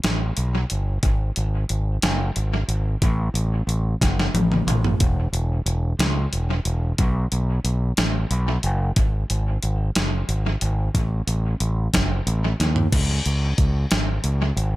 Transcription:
0.04 0.30 A1 medium
0.04 snare loud
0.04 closed hi-hat medium
0.37 0.64 B1 medium
0.37 closed hi-hat medium
0.70 0.97 G1 medium
0.70 closed hi-hat medium
1.03 1.29 G#1 medium
1.03 kick loud
1.03 closed hi-hat medium
1.36 1.63 G#1 medium
1.36 closed hi-hat medium
1.69 1.96 G#1 medium
1.69 closed hi-hat medium
2.02 2.29 F#1 medium
2.02 snare loud
2.02 closed hi-hat medium
2.36 2.63 G#1 medium
2.36 closed hi-hat medium
2.68 2.95 G#1 medium
2.68 closed hi-hat medium
3.02 3.28 A1 medium
3.02 kick loud
3.02 closed hi-hat medium
3.34 3.61 A1 medium
3.34 closed hi-hat medium
3.67 3.94 A1 medium
3.67 closed hi-hat medium
4.01 4.28 F#1 medium
4.01 kick medium
4.01 snare medium
4.01 closed hi-hat medium
4.20 snare medium
4.34 4.60 A1 medium
4.34 closed hi-hat medium
4.34 high tom medium
4.52 mid tom medium
4.67 4.93 A1 medium
4.67 closed hi-hat medium
4.67 mid tom medium
4.85 floor tom medium
5.00 5.27 E1 loud
5.00 kick loud
5.00 closed hi-hat medium
5.33 5.59 E1 medium
5.33 closed hi-hat medium
5.66 5.92 E1 medium
5.66 closed hi-hat medium
5.99 6.25 C#2 medium
5.99 snare loud
5.99 closed hi-hat medium
6.33 6.59 E1 medium
6.33 closed hi-hat medium
6.65 6.92 E1 medium
6.65 closed hi-hat medium
6.98 7.25 B1 medium
6.98 kick loud
6.98 closed hi-hat medium
7.32 7.58 B1 medium
7.32 closed hi-hat medium
7.64 7.91 B1 medium
7.64 closed hi-hat medium
7.97 8.24 A1 medium
7.97 snare loud
7.97 closed hi-hat medium
8.31 8.57 B1 medium
8.31 closed hi-hat medium
8.63 8.90 F#1 medium
8.63 closed hi-hat medium
8.96 9.23 G#1 medium
8.96 kick loud
8.96 closed hi-hat medium
9.30 9.56 G#1 medium
9.30 closed hi-hat medium
9.63 9.89 G#1 medium
9.63 closed hi-hat medium
9.95 10.22 F#1 medium
9.95 snare loud
9.95 closed hi-hat medium
10.29 10.55 G#1 medium
10.29 closed hi-hat medium
10.61 10.88 G#1 medium
10.61 closed hi-hat medium
10.94 11.21 A1 medium
10.94 kick loud
10.94 closed hi-hat medium
11.27 11.53 A1 medium
11.27 closed hi-hat medium
11.60 11.87 A1 medium
11.60 closed hi-hat medium
11.93 12.20 F#1 medium
11.93 kick medium
11.93 snare loud
11.93 closed hi-hat medium
12.27 12.53 A1 medium
12.27 closed hi-hat medium
12.60 12.86 D#2 medium
12.60 snare soft
12.60 closed hi-hat medium
12.76 floor tom medium
12.92 13.19 C#2 medium
12.92 kick loud
12.92 closed hi-hat medium
12.92 crash medium
13.26 13.52 C#2 medium
13.26 closed hi-hat medium
13.58 13.84 C#2 medium
13.58 kick medium
13.58 closed hi-hat medium
13.91 14.18 G#1 medium
13.91 snare loud
13.91 closed hi-hat medium
14.24 14.50 C#2 medium
14.24 closed hi-hat medium
14.57 14.76 G#1 medium
14.57 closed hi-hat medium

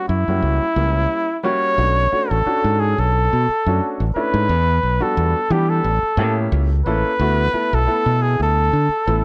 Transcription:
0.09 0.25 F#2 medium
0.09 1.40 E4 medium
0.28 0.40 F#2 medium
0.28 0.63 G3 medium
0.28 0.63 A#3 medium
0.28 0.63 C#4 medium
0.28 0.63 F#4 medium
0.42 0.58 C#2 medium
0.62 muted fingered electric bass stroke soft
0.76 1.05 C#2 medium
0.76 1.24 G3 medium
0.76 1.24 A#3 medium
0.76 1.24 C#4 medium
0.76 1.24 E4 medium
1.43 1.78 G3 medium
1.43 1.78 A#3 medium
1.43 1.77 C#4 medium
1.43 1.77 F#4 medium
1.43 2.31 C#5 loud
1.78 2.07 B1 medium
1.78 2.02 A3 medium
1.78 2.03 C#4 medium
1.78 2.03 D4 medium
1.78 2.03 F#4 medium
2.12 2.36 A3 medium
2.12 2.36 C#4 medium
2.12 2.36 D4 medium
2.12 2.37 F#4 medium
2.12 muted fingered electric bass stroke soft
2.30 2.44 A1 medium
2.30 2.81 A4 medium
2.46 3.29 C#4 medium
2.46 3.29 D4 medium
2.46 3.29 F#4 medium
2.46 3.29 A4 medium
2.46 muted fingered electric bass stroke soft
2.64 2.93 G#2 medium
2.80 3.01 G#4 medium
2.98 3.27 B1 medium
2.98 4.01 A4 medium
3.33 3.46 B2 medium
3.48 muted fingered electric bass stroke soft
3.66 3.79 F#2 medium
3.66 4.02 A3 medium
3.66 4.02 C#4 medium
3.66 4.02 D4 medium
3.66 4.02 F#4 medium
4.00 4.13 A1 medium
4.15 4.49 A3 medium
4.15 4.50 C#4 medium
4.15 4.50 D4 medium
4.15 4.50 E4 medium
4.15 5.04 B4 medium
4.15 muted fingered electric bass stroke soft
4.34 4.47 G#2 medium
4.49 4.78 E2 medium
4.83 4.99 B1 medium
5.00 5.36 G3 medium
5.00 5.36 B3 medium
5.00 5.36 D4 medium
5.00 5.36 F#4 medium
5.00 5.53 A4 medium
5.00 muted fingered electric bass stroke soft
5.17 5.33 E2 medium
5.50 5.80 E3 loud
5.50 5.85 G3 medium
5.50 5.85 B3 medium
5.50 5.85 D4 medium
5.50 5.85 G4 medium
5.50 5.71 G4 medium
5.69 6.44 A4 medium
5.84 6.01 A1 medium
6.03 muted fingered electric bass stroke soft
6.17 6.47 A2 medium
6.17 6.66 A#3 medium
6.17 6.66 C#4 medium
6.17 6.66 E4 medium
6.17 6.67 G4 medium
6.52 6.81 C#2 loud
6.85 7.02 A1 medium
6.85 7.11 A#3 medium
6.85 7.11 C#4 medium
6.85 7.11 E4 medium
6.85 7.11 A4 medium
6.85 7.76 B4 medium
7.19 7.49 D2 medium
7.19 7.45 A3 medium
7.19 7.45 B3 medium
7.19 7.45 E4 medium
7.19 7.45 F#4 medium
7.53 7.78 A3 medium
7.53 7.78 B3 medium
7.53 7.78 E4 medium
7.53 7.78 A4 medium
7.53 muted fingered electric bass stroke soft
7.73 7.86 B1 medium
7.73 8.23 A4 medium
7.87 8.71 A3 medium
7.87 8.71 B3 medium
7.87 8.71 E4 medium
7.87 8.71 A4 medium
7.87 muted fingered electric bass stroke soft
8.06 8.35 B2 medium
8.22 8.41 G#4 medium
8.40 8.69 D2 medium
8.40 9.24 A4 medium
8.73 8.87 D3 medium
8.89 muted fingered electric bass stroke soft
9.07 9.21 A1 medium
9.07 9.24 A3 medium
9.07 9.24 B3 medium
9.07 9.24 E4 medium
9.07 9.24 A4 medium

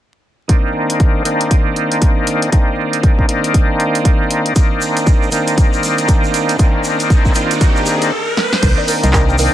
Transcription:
0.48 1.22 D#3 medium
0.48 1.23 A#3 medium
0.48 1.23 C4 medium
0.48 1.24 D4 medium
0.48 kick loud
0.48 closed hi-hat medium
0.90 closed hi-hat medium
1.00 kick loud
1.00 closed hi-hat soft
1.24 2.50 D#3 medium
1.24 2.50 A#3 medium
1.24 2.50 C4 medium
1.24 2.51 D4 loud
1.24 closed hi-hat medium
1.41 closed hi-hat medium
1.51 kick loud
1.51 closed hi-hat medium
1.76 closed hi-hat soft
1.92 closed hi-hat medium
2.02 kick loud
2.02 closed hi-hat medium
2.27 closed hi-hat medium
2.42 closed hi-hat medium
2.51 3.26 D#3 medium
2.51 3.26 A#3 medium
2.51 3.27 C4 medium
2.51 3.27 D4 medium
2.51 kick loud
2.51 closed hi-hat medium
2.93 closed hi-hat medium
3.03 kick loud
3.03 closed hi-hat soft
3.19 kick medium
3.28 4.53 D#3 medium
3.28 4.53 A#3 medium
3.28 4.54 C4 medium
3.28 4.54 D4 loud
3.28 closed hi-hat medium
3.44 closed hi-hat medium
3.54 kick loud
3.54 closed hi-hat medium
3.80 closed hi-hat soft
3.95 closed hi-hat soft
4.05 kick loud
4.05 closed hi-hat medium
4.31 closed hi-hat medium
4.46 closed hi-hat medium
4.55 5.29 D#3 medium
4.55 5.30 A#3 medium
4.55 5.30 C4 medium
4.55 5.30 D4 medium
4.55 kick loud
4.55 closed hi-hat medium
4.55 riser medium
4.55 shaker soft
4.82 shaker medium
4.97 closed hi-hat soft
4.97 shaker soft
5.07 kick loud
5.07 closed hi-hat soft
5.07 shaker medium
5.23 shaker soft
5.31 6.56 D#3 medium
5.31 6.57 A#3 medium
5.31 6.57 C4 medium
5.31 6.58 D4 loud
5.31 closed hi-hat medium
5.31 shaker medium
5.47 closed hi-hat soft
5.47 shaker soft
5.58 kick loud
5.58 closed hi-hat medium
5.58 shaker medium
5.73 shaker soft
5.83 closed hi-hat soft
5.83 shaker medium
5.98 closed hi-hat soft
5.98 shaker soft
6.08 kick loud
6.08 closed hi-hat medium
6.08 shaker medium
6.24 shaker soft
6.34 closed hi-hat medium
6.34 shaker loud
6.49 closed hi-hat soft
6.49 shaker soft
6.58 7.33 D#3 medium
6.58 7.33 A#3 medium
6.58 7.33 C4 medium
6.58 7.34 D4 medium
6.58 kick loud
6.58 closed hi-hat medium
6.58 shaker medium
6.84 shaker medium
7.00 closed hi-hat soft
7.00 shaker soft
7.10 kick loud
7.10 closed hi-hat soft
7.10 shaker medium
7.25 kick medium
7.25 shaker soft
7.34 8.11 D#3 loud
7.34 8.12 A#3 medium
7.34 8.12 C4 medium
7.34 8.13 D4 loud
7.34 closed hi-hat medium
7.34 shaker medium
7.51 closed hi-hat soft
7.51 shaker soft
7.61 kick loud
7.61 closed hi-hat medium
7.61 shaker medium
7.76 shaker soft
7.86 closed hi-hat soft
7.86 shaker loud
8.02 closed hi-hat soft
8.02 shaker soft
8.37 snare medium
8.53 snare medium
8.62 8.74 C2 loud
8.62 9.36 D#3 medium
8.62 9.36 A#3 medium
8.62 9.37 C4 medium
8.62 9.37 D4 medium
8.62 8.71 A#4 medium
8.62 kick loud
8.62 closed hi-hat medium
8.62 crash loud
8.62 shaker soft
8.78 8.81 D5 medium
8.88 9.01 A#4 medium
8.88 open hi-hat loud
8.88 shaker medium
9.03 9.48 C2 medium
9.03 9.09 D#5 medium
9.03 closed hi-hat medium
9.03 shaker soft
9.13 9.27 A#4 medium
9.13 kick loud
9.13 clap loud
9.13 shaker medium
9.29 9.35 G5 loud
9.29 shaker soft
9.38 9.54 D#3 medium
9.38 9.54 A#3 medium
9.38 9.54 C4 medium
9.38 9.54 D4 loud
9.38 9.44 A#4 medium
9.38 open hi-hat medium
9.38 shaker medium

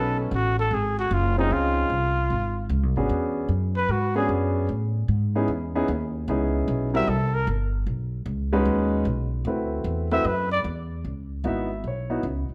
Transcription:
0.00 0.30 B1 medium
0.00 0.30 B3 medium
0.00 0.30 C#4 medium
0.00 0.30 D#4 medium
0.00 0.30 F#4 medium
0.00 0.20 A4 medium
0.00 0.30 A4 medium
0.20 0.36 C#4 soft
0.31 0.70 A1 medium
0.31 0.59 F#4 medium
0.59 0.75 A4 medium
0.71 1.10 G#1 medium
0.71 0.98 G#4 medium
0.99 1.15 F#4 medium
1.11 1.50 F#1 medium
1.11 1.38 F4 medium
1.37 1.88 C4 medium
1.37 1.89 C#4 medium
1.37 1.89 D#4 medium
1.37 1.55 D#4 medium
1.37 1.89 F4 medium
1.37 1.89 G#4 medium
1.51 1.89 C#2 medium
1.51 2.71 F4 medium
1.90 2.29 C2 medium
2.30 2.69 G#1 medium
2.69 2.83 C#2 medium
2.83 2.95 C2 medium
2.96 3.09 G#1 medium
2.96 3.47 B3 medium
2.96 3.48 C#4 medium
2.96 3.47 D4 medium
2.96 3.48 F#4 medium
2.96 3.48 G#4 medium
3.09 3.48 E2 medium
3.49 3.88 F#2 medium
3.77 3.93 B4 medium
3.88 4.28 G#2 medium
3.88 4.16 F#4 medium
4.15 4.66 B3 medium
4.15 4.66 C#4 medium
4.15 4.66 D4 medium
4.15 4.66 F#4 medium
4.15 4.66 G#4 medium
4.15 4.29 G#4 medium
4.29 4.68 F#2 medium
4.69 5.07 A2 medium
5.08 5.47 G#2 medium
5.35 5.48 B3 medium
5.35 5.48 C#4 medium
5.35 5.48 D#4 medium
5.35 5.48 E4 medium
5.35 5.48 G#4 medium
5.48 5.87 E2 medium
5.75 5.87 B3 medium
5.75 5.88 C#4 medium
5.75 5.88 D#4 medium
5.75 5.88 E4 medium
5.75 5.88 G#4 medium
5.88 6.27 D#2 medium
6.28 6.66 C#2 medium
6.28 6.89 B3 medium
6.28 6.89 C#4 medium
6.28 6.89 D#4 medium
6.28 6.89 E4 medium
6.28 6.89 G#4 medium
6.68 7.06 B1 medium
6.94 7.06 G3 medium
6.94 7.06 C4 medium
6.94 7.06 E4 medium
6.94 7.06 F#4 medium
6.94 7.07 A#4 medium
6.94 7.11 E5 medium
7.07 7.46 C2 medium
7.07 7.36 A4 medium
7.34 7.48 A#4 medium
7.47 7.86 G1 medium
7.87 8.25 B1 medium
8.26 8.65 C#2 medium
8.53 9.03 G#3 medium
8.53 9.03 C#4 medium
8.53 9.03 D#4 medium
8.53 9.03 F#4 medium
8.53 9.04 B4 medium
8.65 9.04 D#2 medium
9.05 9.44 B1 medium
9.45 9.84 D2 medium
9.45 10.06 A3 soft
9.45 10.07 C4 soft
9.45 10.07 E4 soft
9.45 10.07 F#4 soft
9.45 10.07 B4 medium
9.84 10.23 E2 medium
10.11 10.24 A3 medium
10.11 10.24 C4 medium
10.11 10.24 E4 medium
10.11 10.24 F#4 medium
10.11 10.24 B4 medium
10.11 10.29 E5 medium
10.24 10.63 F#2 medium
10.24 10.51 B4 medium
10.52 10.60 D5 medium
10.64 11.03 E2 medium
11.04 11.43 C#2 medium
11.44 11.83 G#1 medium
11.44 11.68 B3 medium
11.44 11.67 D#4 medium
11.44 11.68 E4 medium
11.44 11.68 F#4 medium
11.44 11.83 E5 medium
11.84 12.22 B1 medium
11.84 12.23 C#5 medium
12.10 12.22 B3 medium
12.10 12.23 D#4 medium
12.10 12.23 E4 medium
12.10 12.23 F#4 medium
12.23 12.47 C#2 medium
12.49 muted upright bass stroke soft

